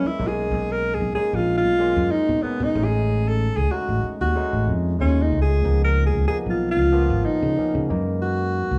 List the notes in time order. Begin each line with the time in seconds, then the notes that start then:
Already playing: E3 G#3 A#3 E4
0.04 E4, muted fingered electric bass stroke
0.19 B1 G#3 A#3 C#4 D#4
0.28 G#4
0.51 B1
0.72 A#4
0.94 G#4
1.00 B1
1.15 G#3 A#3 C#4 D#4 G#4, muted fingered electric bass stroke
1.33 A#1 F4
1.57 F4
1.65 B1
1.79 G#3 A#3 C#4 F4
1.96 F#2
2.11 D#4
2.29 B2
2.42 G#3 A#3 B3 C#4 D#4, muted fingered electric bass stroke
2.60 B2 D#4
2.75 A1 G#3 A3 C#4 D#4
2.85 G#4
3.28 A4
3.57 C#2 G#4
3.71 G#3 A3 C#4 D#4 F#4
3.89 A1
4.04 muted fingered electric bass stroke
4.21 D#2 F#4
4.35 G#3 A3 C#4 D#4
4.53 A1
4.68 F2
4.99 D#2 G#3 A3 C#4 F4
5.22 D#4
5.32 C#2
5.42 G#4
5.63 C#2 F3 A#3 B3 D#4
5.85 A#4
6.06 G#4
6.14 C#2
6.28 F3 A#3 B3 D#4 G#4, muted fingered electric bass stroke
6.46 B1 F4
6.71 F4
6.78 C#2
6.92 F3 A#3 B3 F4
7.10 G#1
7.25 D#4
7.43 C#3
7.56 F3 A#3 B3 C#4, muted fingered electric bass stroke
7.75 C#3
7.89 F#2 E3 G#3 A#3 D#4
8.22 F#4
8.71 C#2